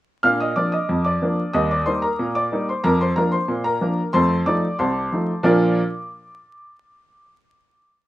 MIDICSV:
0, 0, Header, 1, 2, 480
1, 0, Start_track
1, 0, Key_signature, -2, "major"
1, 0, Tempo, 651466
1, 169, Time_signature, 2, 2, 24, 8
1, 5950, End_track
2, 0, Start_track
2, 0, Title_t, "Upright piano"
2, 0, Program_c, 0, 0
2, 170, Note_on_c, 0, 89, 97
2, 175, Note_on_c, 0, 46, 84
2, 181, Note_on_c, 0, 77, 76
2, 190, Note_on_c, 0, 62, 51
2, 287, Note_off_c, 0, 77, 0
2, 290, Note_off_c, 0, 89, 0
2, 298, Note_on_c, 0, 87, 75
2, 308, Note_on_c, 0, 75, 59
2, 316, Note_off_c, 0, 62, 0
2, 377, Note_off_c, 0, 46, 0
2, 411, Note_off_c, 0, 75, 0
2, 411, Note_on_c, 0, 86, 75
2, 414, Note_off_c, 0, 87, 0
2, 414, Note_on_c, 0, 53, 43
2, 418, Note_on_c, 0, 58, 38
2, 419, Note_on_c, 0, 62, 45
2, 422, Note_on_c, 0, 74, 63
2, 528, Note_off_c, 0, 74, 0
2, 531, Note_off_c, 0, 86, 0
2, 531, Note_on_c, 0, 87, 71
2, 542, Note_on_c, 0, 75, 59
2, 545, Note_off_c, 0, 53, 0
2, 548, Note_off_c, 0, 58, 0
2, 549, Note_off_c, 0, 62, 0
2, 656, Note_on_c, 0, 41, 70
2, 759, Note_off_c, 0, 87, 0
2, 760, Note_off_c, 0, 75, 0
2, 770, Note_on_c, 0, 86, 75
2, 780, Note_on_c, 0, 74, 62
2, 857, Note_off_c, 0, 41, 0
2, 900, Note_on_c, 0, 53, 49
2, 900, Note_on_c, 0, 58, 53
2, 904, Note_on_c, 0, 62, 52
2, 1029, Note_off_c, 0, 53, 0
2, 1029, Note_off_c, 0, 58, 0
2, 1032, Note_off_c, 0, 62, 0
2, 1110, Note_off_c, 0, 74, 0
2, 1112, Note_off_c, 0, 86, 0
2, 1131, Note_on_c, 0, 87, 90
2, 1135, Note_on_c, 0, 39, 78
2, 1139, Note_on_c, 0, 75, 70
2, 1148, Note_on_c, 0, 55, 53
2, 1246, Note_off_c, 0, 75, 0
2, 1250, Note_off_c, 0, 87, 0
2, 1261, Note_on_c, 0, 86, 72
2, 1270, Note_on_c, 0, 74, 59
2, 1275, Note_off_c, 0, 55, 0
2, 1337, Note_off_c, 0, 39, 0
2, 1369, Note_on_c, 0, 84, 81
2, 1372, Note_off_c, 0, 74, 0
2, 1372, Note_on_c, 0, 55, 52
2, 1374, Note_on_c, 0, 58, 46
2, 1375, Note_off_c, 0, 86, 0
2, 1379, Note_on_c, 0, 63, 46
2, 1379, Note_on_c, 0, 72, 59
2, 1485, Note_off_c, 0, 72, 0
2, 1489, Note_off_c, 0, 84, 0
2, 1490, Note_on_c, 0, 82, 73
2, 1497, Note_on_c, 0, 70, 57
2, 1503, Note_off_c, 0, 55, 0
2, 1504, Note_off_c, 0, 58, 0
2, 1508, Note_off_c, 0, 63, 0
2, 1614, Note_on_c, 0, 46, 74
2, 1680, Note_off_c, 0, 82, 0
2, 1715, Note_off_c, 0, 70, 0
2, 1733, Note_on_c, 0, 86, 84
2, 1739, Note_on_c, 0, 74, 61
2, 1814, Note_off_c, 0, 46, 0
2, 1856, Note_on_c, 0, 55, 47
2, 1858, Note_on_c, 0, 58, 48
2, 1863, Note_on_c, 0, 63, 53
2, 1921, Note_off_c, 0, 86, 0
2, 1955, Note_off_c, 0, 74, 0
2, 1982, Note_on_c, 0, 84, 64
2, 1984, Note_off_c, 0, 55, 0
2, 1986, Note_off_c, 0, 58, 0
2, 1989, Note_off_c, 0, 63, 0
2, 1989, Note_on_c, 0, 72, 51
2, 2089, Note_off_c, 0, 72, 0
2, 2090, Note_on_c, 0, 82, 90
2, 2093, Note_off_c, 0, 84, 0
2, 2093, Note_on_c, 0, 41, 89
2, 2100, Note_on_c, 0, 70, 75
2, 2204, Note_off_c, 0, 70, 0
2, 2207, Note_off_c, 0, 82, 0
2, 2217, Note_on_c, 0, 84, 83
2, 2226, Note_on_c, 0, 72, 66
2, 2293, Note_off_c, 0, 41, 0
2, 2327, Note_off_c, 0, 72, 0
2, 2328, Note_on_c, 0, 82, 77
2, 2330, Note_off_c, 0, 84, 0
2, 2333, Note_on_c, 0, 53, 55
2, 2335, Note_on_c, 0, 58, 54
2, 2337, Note_on_c, 0, 62, 51
2, 2337, Note_on_c, 0, 70, 66
2, 2442, Note_off_c, 0, 70, 0
2, 2444, Note_on_c, 0, 84, 76
2, 2446, Note_off_c, 0, 82, 0
2, 2452, Note_on_c, 0, 72, 61
2, 2462, Note_off_c, 0, 53, 0
2, 2464, Note_off_c, 0, 58, 0
2, 2466, Note_off_c, 0, 62, 0
2, 2566, Note_on_c, 0, 46, 77
2, 2671, Note_off_c, 0, 72, 0
2, 2672, Note_off_c, 0, 84, 0
2, 2684, Note_on_c, 0, 82, 83
2, 2692, Note_on_c, 0, 70, 64
2, 2769, Note_off_c, 0, 46, 0
2, 2809, Note_on_c, 0, 53, 52
2, 2810, Note_on_c, 0, 58, 55
2, 2813, Note_on_c, 0, 62, 55
2, 2939, Note_off_c, 0, 53, 0
2, 2941, Note_off_c, 0, 58, 0
2, 2943, Note_off_c, 0, 62, 0
2, 2972, Note_off_c, 0, 82, 0
2, 3023, Note_off_c, 0, 70, 0
2, 3043, Note_on_c, 0, 84, 99
2, 3049, Note_on_c, 0, 41, 88
2, 3053, Note_on_c, 0, 72, 72
2, 3055, Note_on_c, 0, 81, 69
2, 3062, Note_on_c, 0, 57, 61
2, 3190, Note_off_c, 0, 57, 0
2, 3236, Note_off_c, 0, 84, 0
2, 3251, Note_off_c, 0, 41, 0
2, 3272, Note_off_c, 0, 72, 0
2, 3274, Note_off_c, 0, 81, 0
2, 3287, Note_on_c, 0, 86, 87
2, 3290, Note_on_c, 0, 53, 54
2, 3293, Note_on_c, 0, 57, 47
2, 3294, Note_on_c, 0, 74, 69
2, 3295, Note_on_c, 0, 63, 59
2, 3421, Note_off_c, 0, 53, 0
2, 3423, Note_off_c, 0, 57, 0
2, 3424, Note_off_c, 0, 63, 0
2, 3513, Note_off_c, 0, 74, 0
2, 3514, Note_off_c, 0, 86, 0
2, 3527, Note_on_c, 0, 84, 76
2, 3530, Note_on_c, 0, 36, 72
2, 3533, Note_on_c, 0, 81, 61
2, 3535, Note_on_c, 0, 72, 53
2, 3734, Note_off_c, 0, 36, 0
2, 3775, Note_on_c, 0, 53, 52
2, 3778, Note_on_c, 0, 57, 45
2, 3781, Note_on_c, 0, 63, 47
2, 3905, Note_off_c, 0, 53, 0
2, 3908, Note_off_c, 0, 57, 0
2, 3910, Note_off_c, 0, 63, 0
2, 3913, Note_off_c, 0, 84, 0
2, 3983, Note_off_c, 0, 81, 0
2, 3984, Note_off_c, 0, 72, 0
2, 4003, Note_on_c, 0, 46, 98
2, 4005, Note_on_c, 0, 53, 82
2, 4006, Note_on_c, 0, 62, 84
2, 4010, Note_on_c, 0, 65, 81
2, 4010, Note_on_c, 0, 70, 88
2, 4010, Note_on_c, 0, 86, 58
2, 4013, Note_on_c, 0, 74, 82
2, 4274, Note_off_c, 0, 46, 0
2, 4275, Note_off_c, 0, 53, 0
2, 4276, Note_off_c, 0, 62, 0
2, 4278, Note_off_c, 0, 65, 0
2, 4278, Note_off_c, 0, 70, 0
2, 4278, Note_off_c, 0, 86, 0
2, 4280, Note_off_c, 0, 74, 0
2, 5950, End_track
0, 0, End_of_file